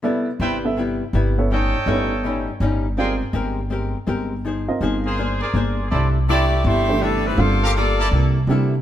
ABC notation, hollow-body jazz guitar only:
X:1
M:4/4
L:1/8
Q:"Swing" 1/4=163
K:C
V:1 name="Hollow-body jazz guitar"
[C,G,B,E] z [C,G,B,E] z [C,G,B,E] z [C,G,B,E] z | [A,,G,^C^D] z [A,,G,CD] z [A,,G,CD] z [A,,G,CD] z | [_A,CG_B] z [A,CGB] z [A,CGB] z [A,CGB] z | [F,_E_Ac] z [F,EAc] z [_B,DAc] z [B,DAc] z |
[C,A,DE] z [C,A,DE] z [C,A,DE] z [C,A,DE] z | [G,_B,FA] z [G,B,FA] z [C,B,EA] z [C,B,EA] z |]